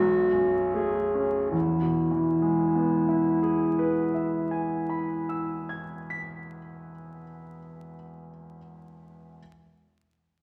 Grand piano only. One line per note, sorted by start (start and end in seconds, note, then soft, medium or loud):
0.00 1.49 B1 soft
0.33 0.99 F#2 soft
0.74 1.38 A3 soft
1.14 1.52 C#4 soft
1.52 5.67 E2 soft
1.82 5.97 B2 soft
2.11 6.26 E3 soft
2.42 6.57 G#3 soft
2.75 6.91 B3 soft
3.09 7.24 E4 soft
3.43 7.58 G#4 soft
3.79 7.94 B4 soft
4.14 8.30 E5 soft
4.51 8.57 G#5 soft
4.89 8.58 B5 soft
5.29 8.58 E6 soft
5.69 8.58 G#6 soft
6.10 8.58 B6 soft